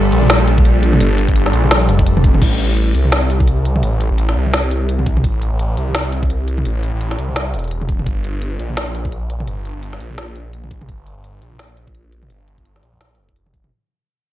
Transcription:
Already playing: G1 G3 D4 A4
0.12 A#1, closed hi-hat
0.23 mid tom
0.30 snare, closed hi-hat
0.48 closed hi-hat
0.58 kick
0.65 closed hi-hat
0.83 closed hi-hat
0.93 mid tom
1.00 G1, closed hi-hat
1.18 closed hi-hat
1.28 G1, kick
1.36 closed hi-hat
1.46 snare
1.53 A#1, closed hi-hat
1.64 mid tom
1.71 snare, closed hi-hat
1.89 F1, closed hi-hat
1.99 kick
2.07 closed hi-hat
2.17 mid tom
2.24 kick, closed hi-hat
2.35 mid tom
2.42 A1, kick, closed hi-hat, crash
2.59 closed hi-hat
2.77 closed hi-hat
2.95 C2, closed hi-hat
3.05 mid tom
3.12 snare, closed hi-hat
3.30 closed hi-hat
3.40 kick
3.48 closed hi-hat
3.65 closed hi-hat
3.76 mid tom
3.83 A1, closed hi-hat
4.01 closed hi-hat
4.11 A1
4.18 closed hi-hat
4.29 snare
4.36 C2
4.46 mid tom
4.54 snare, closed hi-hat
4.71 closed hi-hat
4.89 closed hi-hat
4.99 mid tom
5.06 kick, closed hi-hat
5.17 mid tom
5.24 A1, kick, closed hi-hat
5.42 closed hi-hat
5.52 A1
5.59 closed hi-hat
5.77 C2, closed hi-hat
5.88 mid tom
5.92 snare, closed hi-hat, mid tom
6.12 closed hi-hat
6.23 kick
6.30 closed hi-hat
6.48 closed hi-hat
6.58 mid tom
6.65 A1, closed hi-hat
6.83 closed hi-hat
6.94 A1
7.01 closed hi-hat
7.11 snare
7.19 C2, closed hi-hat
7.29 mid tom
7.36 snare, closed hi-hat
7.54 E1, closed hi-hat
7.59 closed hi-hat
7.64 closed hi-hat
7.68 closed hi-hat
7.71 closed hi-hat
7.82 mid tom
7.89 E1, kick, closed hi-hat
7.99 mid tom
8.06 G1, kick, closed hi-hat
8.24 closed hi-hat
8.42 closed hi-hat
8.59 A#1, closed hi-hat
8.70 mid tom
8.77 snare, closed hi-hat
8.95 closed hi-hat
9.05 kick
9.12 closed hi-hat
9.30 closed hi-hat
9.40 mid tom
9.47 G1, closed hi-hat
9.65 closed hi-hat
9.76 G1
9.83 closed hi-hat
9.93 snare
10.00 A#1, closed hi-hat
10.11 mid tom
10.18 snare, closed hi-hat
10.36 closed hi-hat
10.53 closed hi-hat
10.64 mid tom
10.71 kick, closed hi-hat
10.82 mid tom
10.89 G1, kick, closed hi-hat
11.07 closed hi-hat
11.17 G1
11.24 closed hi-hat
11.42 A#1, closed hi-hat
11.52 mid tom
11.59 snare, closed hi-hat
11.77 closed hi-hat
11.87 kick
11.95 closed hi-hat
12.12 closed hi-hat
12.23 mid tom
12.30 G1, closed hi-hat
12.48 closed hi-hat
12.58 G1, kick
12.65 closed hi-hat
12.76 snare
12.83 A#1, closed hi-hat
12.94 mid tom
13.01 snare, closed hi-hat
13.15 F1, closed hi-hat
13.29 kick
13.36 closed hi-hat
13.46 mid tom
13.54 kick, closed hi-hat
13.64 mid tom

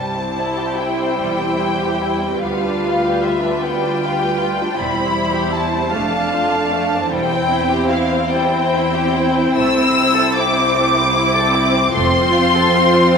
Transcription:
Already playing: C2 G3 E4 C5 A5
0.14 C4
0.37 E4
0.58 G4
0.77 E4 G5
0.99 C4
1.18 E1 E2 G3
1.38 C4
1.59 E4
1.80 G4
2.01 E4
2.23 C4
2.41 D2 B3 F4 B4 F5
2.64 D4
2.86 F4
3.05 G4
3.23 F4 E5
3.43 D4
3.62 B3 G5
3.82 D4
4.03 F4
4.20 G4
4.40 F4
4.60 D4
4.77 E1 E2 G3 E4 C5 B5
4.96 C4
5.14 E4
5.33 G4
5.52 E4 A5
5.72 C4
5.91 F1 F2 A3 D4 F5
6.12 D4
6.33 F4
6.53 D4
6.73 A3
6.92 D4
7.10 E1 E2 G3 C4 E4 C5 G5
7.31 C4
7.50 E4
7.69 G4
7.89 E4 F5
8.10 C4
8.30 G3 G5
8.50 C4
8.73 E4
8.94 G4
9.15 E4
9.36 C4
9.56 C2 A3 E6
9.78 C4
9.97 E4
10.16 A4
10.37 E4 D6
10.56 C4
10.75 A3
10.96 C4
11.15 E4
11.35 A4
11.54 E4
11.73 C4
11.94 F1 F2 A3 C4 F4 C5 C6
12.13 C4
12.33 F4
12.54 A4
12.74 F4
12.94 C4
13.14 A3

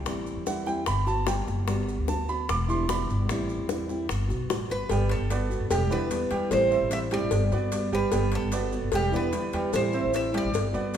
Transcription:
0.05 A1 E3 G3 C4 E4, high bongo, maracas
0.27 maracas
0.36 E2
0.46 E3 G3 C4 E4 F#5, high bongo, maracas
0.66 G3 C4 E4 G5, high bongo, maracas
0.86 G1 B5, muted steel-string acoustic guitar stroke, high bongo, maracas
1.07 B3 F#4 A5, high bongo, maracas
1.26 G3 B3 G5, high bongo, low bongo, maracas
1.47 F#1, high bongo, maracas
1.67 G1 G3 B3 F#4, high bongo, maracas
1.89 maracas
1.98 D2
2.08 G3 B3 F#4 A5, high bongo, maracas
2.29 B3 F#4 B5, maracas
2.49 E1 D6, muted steel-string acoustic guitar stroke, high bongo, maracas
2.68 D3 G3 B3 E4 C6, maracas
2.89 D3 G3 B3 E4 B5, high bongo, low bongo, maracas
3.09 G1, maracas
3.29 A1 E3 G3 C4 E4, high bongo, maracas
3.49 maracas
3.59 E2
3.68 E3 G3 C4 E4, high bongo, maracas
3.88 G3 C4 E4, high bongo, maracas
4.09 G1, muted steel-string acoustic guitar stroke, high bongo, maracas
4.28 B1 B3 F#4, high bongo, maracas
4.49 A1 G3 B3 F#4, high bongo, low bongo, maracas
4.70 G1 B4, high bongo, maracas
4.89 G1 G3 B3 G5, cowbell, maracas
5.09 A4, cowbell, maracas
5.19 G1
5.29 G3 B3 F#4 B4 D5, cowbell, maracas
5.50 B3 F#4, maracas
5.60 F#1
5.70 E1 G3 G4 G5, muted steel-string acoustic guitar stroke, cowbell, maracas
5.90 E2 D3 G3 B3 E4 B4 D5, maracas
6.10 D3 G3 B3 E4, cowbell, maracas
6.31 E2 G3 G4 G5, cowbell, maracas
6.50 A1 E3 G3 C4 E4 C5, cowbell, maracas
6.71 C4 C5 E5, maracas
6.81 A1
6.91 E3 G3 C4 E4 E5, cowbell, maracas
7.11 G3 C4 E4 G4 D5 G5, cowbell, maracas
7.21 A1
7.31 G1, muted steel-string acoustic guitar stroke, cowbell, maracas
7.52 G2 B3 F#4 B4 D5, maracas
7.72 G3 B3 F#4, cowbell, maracas
7.92 G1 G3 G4 B4 G5, maracas
8.11 G1 G3 B3 G5, cowbell, maracas
8.32 A4, cowbell, maracas
8.42 G1
8.52 G3 B3 F#4 B4 D5, cowbell, maracas
8.72 B3 F#4, maracas
8.82 G1
8.92 E1 G3 G4 G5, muted steel-string acoustic guitar stroke, cowbell, maracas
9.12 E2 D3 G3 B3 E4 B4 D5, maracas
9.16 B4
9.33 D3 G3 B3 E4, cowbell, maracas
9.53 E2 G3 G4 G5, cowbell, maracas
9.72 A1 E3 G3 C4 E4 C5, cowbell, maracas
9.93 C4 C5 E5, maracas
10.04 A1
10.12 E3 G3 C4 E4 E5, cowbell, maracas
10.32 G3 C4 E4 G4 G5, cowbell, maracas
10.38 D5
10.44 A1
10.52 G1, muted steel-string acoustic guitar stroke, cowbell, maracas
10.73 G2 B3 F#4 B4 D5, maracas
10.93 G3 B3 F#4, maracas

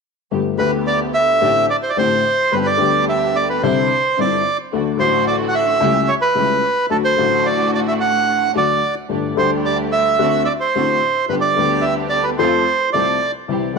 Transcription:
0.31 G1 G2 D3 A3 B3 G4
0.58 D2 D3 A3 B3 G4 B4
0.87 D5
1.14 E5
1.41 A1 A2 D3 A3 C4 D4 G4
1.70 D5
1.83 C5
1.90 D5
1.97 A1 A2 D3 A3 C4 D4 G4 C5
2.52 G1 G2 D3 G3 B3 D4 G4 B4
2.66 D5
2.77 D2 D3 G3 B3 D4 G4
2.81 G4
3.09 E5
3.36 D5
3.50 B4
3.63 C2 C3 D3 G3 C4 D4 E4 C5
4.17 G1 G2 D3 G3 C4 D4 E4 D5
4.73 D2 D3 F#3 A3 D4 F#4
4.97 A1 A2 D3 F#3 A3 D4 F#4 C5
5.27 D5
5.48 F#5
5.55 E5
5.80 C#2 C#3 G3 A3 C#4 E4 G4
6.08 C#5
6.21 B4
6.35 C#2 C#3 G3 A3 C#4 E4 G4
6.90 D2 D3 F#3 A3 D4 F#4 A4
7.04 C5
7.16 A1 A2 D3 F#3 A3 D4 F#4
7.20 F#4
7.46 D5
7.75 D5
7.88 E5
8.01 F#5
8.54 D2 D3 F#3 A3 D4 F#4 D5
9.09 G1 G2 D3 G3 A3 D4 G4
9.35 D2 D3 G3 A3 D4 G4 C5
9.65 D5
9.92 E5
10.19 D2 D3 A3 C4 D4 F#4
10.45 D5 E5
10.60 C5
10.75 A1 A2 D3 A3 C4 D4 F#4
11.29 G1 G2 D3 G3 B3 D4 G4 B4
11.41 D5
11.56 D2 D3 G3 B3 D4 G4
11.81 E5
12.09 D5
12.24 B4
12.39 F2 F3 A3 C4 F4 A4 C5
12.93 C2 C3 F3 A3 C4 F4 A4 D5
13.48 C2 C3 E3 G3 C4 E4 G4
13.74 E3

